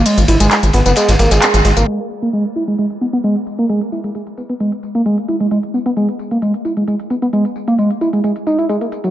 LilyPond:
<<
  \new Staff \with { instrumentName = "Analog synth lead" } { \clef bass \time 4/4 \key gis \minor \tempo 4 = 132 gis16 r16 e'16 gis16 gis16 r16 b16 b16 gis16 r16 ais16 gis16 gis16 gis16 gis16 ais16 | gis16 r8 ais16 gis16 r16 e'16 gis16 gis16 r16 b16 b16 gis16 r8 ais16 | gis16 r16 e'16 gis16 gis16 r16 b16 b16 gis16 r8 ais16 gis16 r16 e'16 gis16 | gis16 r16 b16 b16 gis16 r8 ais16 gis16 r16 e'16 gis16 gis16 r16 b16 b16 |
gis16 r8 ais16 gis16 r16 e'16 gis16 gis16 r16 dis'16 e'16 gis16 ais16 r16 fis16 | }
  \new Staff \with { instrumentName = "Analog synth bass" } { \clef bass \time 4/4 \key gis \minor r16 gis,,16 gis,,16 gis,,16 r16 gis,,16 gis,,16 fis,,16 r16 gis,,16 gis,,16 gis,,16 r16 gis,,16 gis,,16 gis,,16 | r1 | r1 | r1 |
r1 | }
  \new DrumStaff \with { instrumentName = "Drums" } \drummode { \time 4/4 <hh hho tamb>16 <hh tamb>16 <hho cymr>16 <hh sn tamb>16 <hc hh cymr sn tamb>16 <hh tamb>16 <hho cymr sn>16 <hh sn tamb>16 <hh cymr sn tamb>16 <hh cymr sn tamb>16 <hho cymr sn>16 <hh cymr sn tamb>16 <hc hh cymr tamb>16 <hh sn tamb>16 <hho cymr sn>16 <hh tamb>16 | hh16 hh16 tamb16 <hh tamb>16 <hh tamb>16 <hh tamb>16 <hh tamb>16 <hh tamb>16 <hh tamb>16 <hh tamb>16 <hh tamb>16 <hh tamb>16 <hh tamb>16 <hh tamb>16 <hh tamb>16 <hh tamb>16 | <hh tamb>16 <hh tamb>16 tamb16 <hh tamb>16 <hh tamb>16 <hh tamb>16 <hh tamb>16 <hh tamb>16 <hh tamb>16 <hh tamb>16 <hh tamb>16 <hh tamb>16 <hh tamb>16 <hh tamb>16 <hh tamb>16 <hh tamb>16 | <hh tamb>16 <hh tamb>16 tamb16 <hh tamb>16 <hh tamb>16 <hh tamb>16 <hh tamb>16 <hh tamb>16 <hh tamb>16 <hh tamb>16 <hh tamb>16 <hh tamb>16 <hh tamb>16 <hh tamb>16 <hh tamb>16 <hh tamb>16 |
<hh tamb>16 <hh tamb>16 tamb16 <hh tamb>16 <hh tamb>16 <hh tamb>16 <hh tamb>16 <hh tamb>16 <hh tamb>16 <hh tamb>16 <hh tamb>16 <hh tamb>16 <hh tamb>16 <hh tamb>16 <hh tamb>16 <hh tamb>16 | }
>>